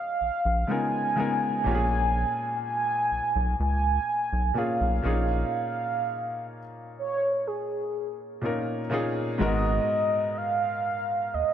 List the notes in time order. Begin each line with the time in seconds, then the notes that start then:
Already playing: F5
0.21 A#1
0.45 A#1
0.67 C#3 G#3 B3 D#4 F4 G#5
0.71 A#4
1.16 C#3 G#3 B3 D#4 F4
1.20 A#4
1.64 A#1 A#2 A#3 C#4 F4 G#5
1.68 G4
1.75 G#4
2.64 G#5
3.12 B1
3.36 B1
3.60 C#2 G#5
4.33 B1
4.54 A#2 A#3 C#4 F4 F5
4.58 G#4
4.81 B1
5.02 A#1 A#2 A#3 C#4 D#4 F4
5.07 G#4
5.54 F5
6.99 C#5
7.47 G#4
8.42 A#2 A#3 C#4 D#4 F4
8.46 A#4
8.90 A#2 A#3 C#4 D#4 F4
8.94 G#4
9.38 G#1 G#2 G#3 B3 F#4 D#5
9.42 A#4
10.38 F5
11.34 D#2 D#5